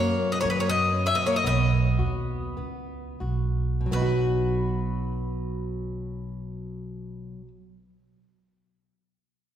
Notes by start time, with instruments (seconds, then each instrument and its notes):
Already playing: upright bass F#2, nylon-string guitar F#3 C#4, twelve-string acoustic guitar A#3
0.00 mandolin C#5
0.32 twelve-string acoustic guitar B3, mandolin D#5
0.41 upright bass F#2, twelve-string acoustic guitar A#3, mandolin C#5
0.45 nylon-string guitar F#3
0.50 twelve-string acoustic guitar G#3, mandolin B4
0.60 twelve-string acoustic guitar A#3, mandolin C#5
0.69 twelve-string acoustic guitar B3, mandolin D#5
0.92 nylon-string guitar C#4
1.06 twelve-string acoustic guitar C#4, mandolin E5
1.15 twelve-string acoustic guitar B3, mandolin D#5
1.26 twelve-string acoustic guitar A#3, mandolin C#5
1.36 twelve-string acoustic guitar B3, mandolin D#5
1.44 upright bass B1, nylon-string guitar B3, twelve-string acoustic guitar B3, mandolin D#5
1.99 upright bass D#2, nylon-string guitar F#4
2.57 upright bass C#2, nylon-string guitar B3
3.20 upright bass B1, nylon-string guitar F#4
3.81 nylon-string guitar B2
3.86 nylon-string guitar F#3
3.91 upright bass B1, nylon-string guitar B3, twelve-string acoustic guitar F#4, mandolin B4
3.96 nylon-string guitar D#4
4.02 nylon-string guitar F#4